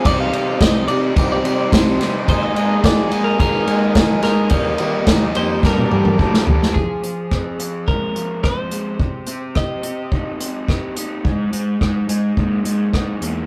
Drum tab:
RD |x-x-x-x-x-x-x-x-|x-x-x-x-x-x-x-x-|x-x-x-x---------|----------------|
HH |----------------|----------------|----------------|--x---x---x---x-|
SD |----o-------o-o-|----o-------o-o-|----o---o----o-o|----r-------r---|
T1 |----------------|----------------|---------o------|----------------|
T2 |----------------|----------------|----------oo----|----------------|
FT |----------------|----------------|--------------o-|----------------|
BD |o---o---o---o---|o---o---o---o---|o---o---o---o---|o---o---o---o---|

RD |----------------|----------------|
HH |--x---x---x---x-|--x---x---x---x-|
SD |----r-------r---|----r-------r---|
T1 |----------------|----------------|
T2 |----------------|----------------|
FT |----------------|----------------|
BD |o---o---o---o---|o---o---o---o---|